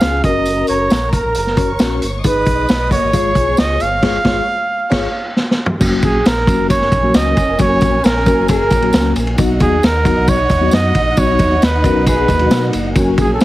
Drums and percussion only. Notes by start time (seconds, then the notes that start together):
0.01 snare, closed hi-hat, tambourine
0.23 kick, closed hi-hat, tambourine
0.46 closed hi-hat, tambourine
0.67 closed hi-hat, tambourine
0.90 snare, closed hi-hat, tambourine
1.13 kick, closed hi-hat, tambourine
1.35 closed hi-hat, tambourine
1.47 snare
1.57 kick, closed hi-hat, tambourine
1.79 snare, closed hi-hat, tambourine
2.02 closed hi-hat, tambourine
2.24 kick, closed hi-hat, tambourine
2.45 kick, closed hi-hat, tambourine
2.69 snare, closed hi-hat, tambourine
2.91 kick, closed hi-hat, tambourine
3.13 kick, closed hi-hat, tambourine
3.35 kick, closed hi-hat, tambourine
3.57 snare, closed hi-hat, tambourine
3.80 closed hi-hat, tambourine
4.03 kick, snare, crash
4.25 kick, snare
4.92 kick, snare, crash
5.36 snare
5.51 snare
5.66 floor tom
5.81 kick, crash, tambourine
6.02 kick, ride, tambourine
6.26 snare, ride, tambourine
6.37 snare
6.47 kick, ride, tambourine
6.70 kick, ride, tambourine
6.81 snare
6.92 kick, ride, tambourine
7.14 snare, ride, tambourine
7.37 kick, ride, tambourine
7.59 kick, ride, tambourine
7.81 kick, ride, tambourine
8.04 snare, ride, tambourine
8.16 snare
8.26 kick, ride, tambourine
8.48 kick, ride, tambourine
8.71 kick, ride, tambourine
8.82 ride
8.93 snare, ride, tambourine
9.16 ride, tambourine
9.27 ride
9.38 kick, ride, tambourine
9.60 kick, ride, tambourine
9.83 snare, ride, tambourine
10.05 kick, ride, tambourine
10.28 kick, ride, tambourine
10.49 kick, ride, tambourine
10.71 snare, ride, tambourine
10.95 kick, ride, tambourine
11.17 kick, ride, tambourine
11.39 kick, ride, tambourine
11.62 snare, ride, tambourine
11.84 kick, ride, tambourine
12.07 kick, ride, tambourine
12.28 kick, ride, tambourine
12.39 ride
12.51 snare, ride, tambourine
12.73 ride, tambourine
12.96 kick, ride, tambourine
13.18 kick, ride, tambourine
13.40 snare, ride, tambourine